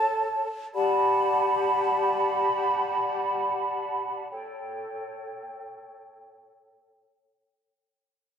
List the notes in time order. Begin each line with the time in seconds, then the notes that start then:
Already playing: A4 C#5 A5
0.75 G4 D5 F#5 A5 B5
4.31 A4 C#5 G5